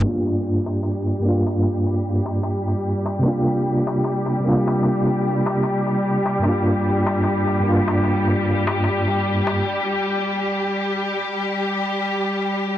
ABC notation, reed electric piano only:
X:1
M:4/4
L:1/8
Q:"Swing 16ths" 1/4=75
K:Gm
V:1 name="Reed electric piano"
[G,,B,DF]3 [G,,B,DF]4- [G,,B,DF] | [C,G,B,DF]3 [C,G,B,DF]4- [C,G,B,DF] | [G,,B,DF]3 [G,,B,DF]4- [G,,B,DF] | z8 |]